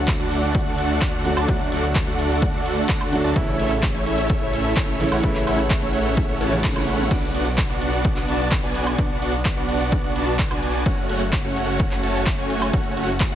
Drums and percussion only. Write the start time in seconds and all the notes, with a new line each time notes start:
0.08 kick, clap, closed hi-hat, shaker
0.20 closed hi-hat, shaker
0.31 open hi-hat, ride, shaker
0.43 closed hi-hat, shaker
0.55 kick, closed hi-hat, shaker
0.66 closed hi-hat
0.78 open hi-hat, ride, shaker
0.90 closed hi-hat, shaker
1.01 kick, clap, closed hi-hat, shaker
1.13 closed hi-hat
1.25 open hi-hat, ride, shaker
1.37 closed hi-hat, high woodblock, shaker
1.49 kick, closed hi-hat, shaker
1.60 closed hi-hat, shaker
1.72 open hi-hat, ride, shaker
1.84 closed hi-hat, shaker
1.95 kick, clap, closed hi-hat, shaker
2.07 closed hi-hat, shaker
2.19 open hi-hat, ride, shaker
2.31 closed hi-hat, shaker
2.42 kick, closed hi-hat, shaker
2.54 closed hi-hat
2.66 open hi-hat, ride, shaker
2.77 closed hi-hat, shaker
2.89 kick, clap, closed hi-hat, shaker
3.01 closed hi-hat, high woodblock
3.13 open hi-hat, ride, shaker
3.24 closed hi-hat, shaker
3.36 kick, closed hi-hat, shaker
3.48 closed hi-hat, shaker
3.59 open hi-hat, ride, shaker
3.71 closed hi-hat, shaker
3.83 kick, clap, closed hi-hat, shaker
3.95 closed hi-hat, shaker
4.06 open hi-hat, ride, shaker
4.18 closed hi-hat, shaker
4.30 kick, closed hi-hat, shaker
4.42 closed hi-hat
4.53 open hi-hat, ride, shaker
4.65 closed hi-hat, shaker
4.76 kick, clap, closed hi-hat, shaker
4.88 closed hi-hat
5.00 open hi-hat, ride, shaker
5.12 closed hi-hat, high woodblock, shaker
5.24 kick, closed hi-hat, shaker
5.35 clap, closed hi-hat, shaker
5.47 open hi-hat, ride, high woodblock, shaker
5.59 closed hi-hat, shaker
5.70 kick, clap, closed hi-hat, shaker
5.82 closed hi-hat, shaker
5.94 open hi-hat, ride, shaker
6.06 closed hi-hat, shaker
6.17 kick, closed hi-hat, shaker
6.29 closed hi-hat
6.41 open hi-hat, high tom, ride, shaker
6.52 closed hi-hat, high tom, shaker
6.64 kick, clap, closed hi-hat, mid tom, shaker
6.76 closed hi-hat, mid tom, high woodblock, shaker
6.88 open hi-hat, ride, shaker
6.99 closed hi-hat, mid tom, shaker
7.11 kick, closed hi-hat, crash, shaker
7.23 closed hi-hat, shaker
7.34 open hi-hat, ride, shaker
7.46 closed hi-hat, shaker
7.58 kick, clap, closed hi-hat, shaker
7.70 closed hi-hat, shaker
7.81 open hi-hat, ride, shaker
7.93 closed hi-hat, shaker
8.05 kick, closed hi-hat, shaker
8.16 clap, closed hi-hat
8.28 open hi-hat, ride, shaker
8.40 closed hi-hat, shaker
8.51 kick, clap, closed hi-hat, shaker
8.63 closed hi-hat
8.75 open hi-hat, ride, shaker
8.87 closed hi-hat, high woodblock, shaker
8.98 kick, closed hi-hat, shaker
9.10 closed hi-hat, shaker
9.22 open hi-hat, ride, shaker
9.34 closed hi-hat, shaker
9.45 kick, clap, closed hi-hat, shaker
9.57 closed hi-hat, shaker
9.69 open hi-hat, ride, shaker
9.81 closed hi-hat, shaker
9.92 kick, closed hi-hat, shaker
10.04 closed hi-hat
10.16 open hi-hat, ride, shaker
10.27 closed hi-hat, shaker
10.39 kick, clap, closed hi-hat, shaker
10.51 closed hi-hat, high woodblock
10.63 open hi-hat, ride, shaker
10.74 closed hi-hat, shaker
10.86 kick, closed hi-hat, shaker
10.98 closed hi-hat, shaker
11.09 open hi-hat, ride, shaker
11.21 closed hi-hat, shaker
11.33 kick, clap, closed hi-hat, shaker
11.45 closed hi-hat, shaker
11.56 open hi-hat, ride, shaker
11.68 closed hi-hat, shaker
11.80 kick, closed hi-hat, shaker
11.91 clap, closed hi-hat
12.03 open hi-hat, ride, shaker
12.15 closed hi-hat, shaker
12.26 kick, clap, closed hi-hat, shaker
12.38 closed hi-hat
12.50 open hi-hat, ride, shaker
12.62 closed hi-hat, high woodblock, shaker
12.74 kick, closed hi-hat, shaker
12.85 closed hi-hat, shaker
12.97 open hi-hat, ride, shaker
13.09 closed hi-hat, shaker
13.20 kick, clap, closed hi-hat, shaker